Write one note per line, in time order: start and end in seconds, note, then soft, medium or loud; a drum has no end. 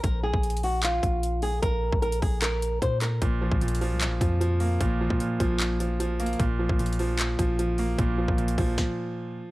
0.03 0.32 A#1 loud
0.03 0.21 A#4 medium
0.03 kick loud
0.03 closed hi-hat medium
0.23 0.61 G#4 medium
0.34 1.00 A#1 loud
0.34 kick loud
0.43 closed hi-hat medium
0.50 closed hi-hat medium
0.57 closed hi-hat medium
0.63 0.81 F#4 medium
0.63 open hi-hat medium
0.83 1.40 F4 medium
0.83 clap loud
0.83 closed hi-hat medium
1.03 1.60 A#1 loud
1.03 kick medium
1.03 closed hi-hat medium
1.23 closed hi-hat medium
1.42 1.60 G#4 medium
1.42 open hi-hat medium
1.62 1.91 A#1 loud
1.62 2.00 A#4 loud
1.62 kick loud
1.62 closed hi-hat medium
1.93 2.21 A#1 loud
1.93 kick loud
2.02 2.20 A#4 medium
2.02 closed hi-hat soft
2.12 closed hi-hat medium
2.22 2.80 A#1 loud
2.22 2.40 G#4 medium
2.22 kick loud
2.22 open hi-hat medium
2.42 2.79 A#4 medium
2.42 clap loud
2.42 closed hi-hat medium
2.62 closed hi-hat medium
2.82 3.20 A#2 loud
2.82 3.00 C5 medium
2.82 kick medium
2.82 closed hi-hat medium
3.01 3.19 A#4 medium
3.01 clap medium
3.01 closed hi-hat medium
3.22 3.50 A#1 loud
3.22 3.60 A#2 medium
3.22 kick loud
3.22 closed hi-hat medium
3.41 3.80 F3 medium
3.51 3.93 A#1 loud
3.51 kick loud
3.61 4.61 A#2 medium
3.61 closed hi-hat medium
3.68 closed hi-hat medium
3.75 closed hi-hat medium
3.81 4.20 F3 medium
3.81 open hi-hat medium
3.91 4.08 C2 loud
4.01 clap loud
4.01 closed hi-hat medium
4.06 4.20 A#1 loud
4.21 4.78 F2 loud
4.21 4.39 F3 medium
4.21 kick medium
4.21 closed hi-hat medium
4.41 4.99 F3 medium
4.41 closed hi-hat medium
4.60 5.60 A#3 medium
4.60 open hi-hat medium
4.81 5.09 A#1 loud
4.81 5.19 A#2 medium
4.81 kick loud
4.81 closed hi-hat medium
5.01 5.39 F3 medium
5.10 5.39 A#2 loud
5.10 kick loud
5.20 6.20 A#2 medium
5.20 closed hi-hat medium
5.40 6.36 A#1 loud
5.40 5.79 F3 loud
5.40 kick loud
5.40 closed hi-hat medium
5.60 clap loud
5.60 closed hi-hat medium
5.80 5.98 F3 medium
5.80 closed hi-hat medium
6.00 6.40 F3 loud
6.00 closed hi-hat medium
6.20 6.40 A#3 medium
6.20 closed hi-hat medium
6.26 closed hi-hat medium
6.33 closed hi-hat soft
6.39 6.68 A#1 loud
6.39 6.78 A#2 medium
6.39 kick loud
6.39 closed hi-hat medium
6.59 6.98 F3 medium
6.69 7.36 A#1 loud
6.69 kick loud
6.79 7.79 A#2 medium
6.79 closed hi-hat medium
6.86 closed hi-hat medium
6.93 closed hi-hat medium
6.99 7.38 F3 medium
6.99 open hi-hat medium
7.19 clap loud
7.19 closed hi-hat medium
7.39 7.96 A#1 loud
7.39 7.57 F3 medium
7.39 kick medium
7.39 closed hi-hat medium
7.59 8.17 F3 medium
7.59 closed hi-hat medium
7.78 8.78 A#3 medium
7.78 open hi-hat medium
7.98 8.27 A#1 loud
7.98 8.37 A#2 medium
7.98 kick loud
7.98 closed hi-hat medium
8.18 8.58 F3 medium
8.28 8.57 A#1 loud
8.28 kick loud
8.38 9.37 A#2 medium
8.38 closed hi-hat soft
8.48 closed hi-hat medium
8.58 8.77 A#1 loud
8.58 9.51 F3 loud
8.58 kick loud
8.58 open hi-hat medium
8.78 kick loud
8.78 snare loud